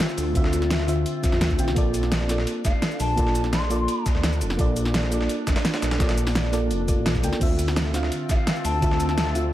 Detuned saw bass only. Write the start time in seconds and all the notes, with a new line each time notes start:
0.18 D2
0.35 D2
1.32 F2
1.41 D2
1.59 A1
1.68 C2
1.76 A#1
2.65 F1
3.00 A#1
3.18 A#1
4.15 D2
4.41 F1
4.59 A#1
5.47 F1
5.82 A#1
6.00 A#1
6.71 F1
6.97 A#1
7.23 D2
7.41 D2
8.29 A1
8.65 D2
8.82 D2